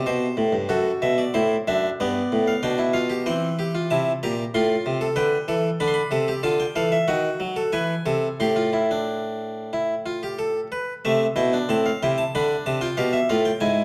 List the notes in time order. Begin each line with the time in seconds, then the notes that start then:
Already playing: G4
0.06 B2 C5
0.37 A2
0.53 G2
0.69 F#2 F#4 A4
1.02 B2 E5
1.18 D5
1.34 A2 E4 C5
1.68 F#2 D4 E5
2.00 G2 B3 D5
2.32 A2
2.48 F5
2.63 B2 D4 G5
2.78 E4
2.93 F4 F5
3.10 G4
3.26 E3 C4 G5
3.59 G4
3.75 F4
3.90 C3 E4 A5
4.23 A#2 G4 A#5
4.54 A2 F4 C6
4.86 C3
5.01 A4
5.16 D3 B4 G5
5.48 E3 A4
5.80 D3 D4 B5
5.88 C6
5.94 B5
6.11 C3 A4
6.28 G4
6.43 D3 F4 A5
6.60 G5
6.76 E3 A4 F5
6.92 E5
7.08 D#3 F#4 F#5
7.40 F#3
7.56 A4
7.72 E3 B4 G#5
8.06 C3 A4
8.40 A2 G4 C6
8.56 F4
8.73 E4
8.91 D4
9.73 E4
10.06 F4
10.23 G4
10.39 A4
10.72 B4
11.05 C3 A3 E5
11.36 B2 E4 G5
11.53 D4
11.69 A2 C4 A5
11.86 F5
12.03 C3 E4 G5
12.18 A5
12.35 D3 D4 B5
12.66 C3 A5
12.81 F4 G5
12.97 B2 G4 F5
13.13 E5
13.29 A2 F4 F5
13.45 G5
13.60 G#2 E4 G#5